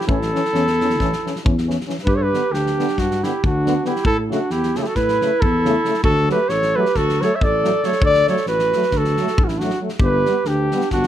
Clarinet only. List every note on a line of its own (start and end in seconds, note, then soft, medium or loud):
0.00 0.10 E4 medium
0.13 1.67 E4 medium
2.08 2.19 G4 medium
2.17 2.26 A4 medium
2.25 2.56 G4 medium
2.55 3.00 D4 medium
3.00 3.25 D4 medium
3.23 3.43 E4 medium
3.45 3.88 D4 medium
3.87 4.05 E4 medium
4.07 4.18 E4 medium
4.29 4.53 D4 medium
4.52 4.78 E4 medium
4.77 4.84 F#4 medium
4.83 4.89 E4 medium
4.87 4.98 F#4 medium
4.96 5.44 E4 medium
5.44 6.03 E4 loud
6.03 6.28 F#4 medium
6.32 6.53 G4 medium
6.51 6.82 A4 medium
6.80 6.99 G4 medium
6.97 7.26 F#4 loud
7.24 7.37 A4 medium
7.36 7.43 C#5 medium
7.42 7.83 A4 loud
7.83 8.02 A4 medium
8.02 8.27 A4 medium
8.30 8.47 A4 medium
8.48 8.94 F#4 medium
8.94 9.42 F#4 medium
9.41 9.55 C#4 medium
9.41 9.46 D4 medium
9.54 9.77 D4 medium
10.00 10.48 G4 medium
10.46 10.92 D4 medium
10.92 11.07 D4 medium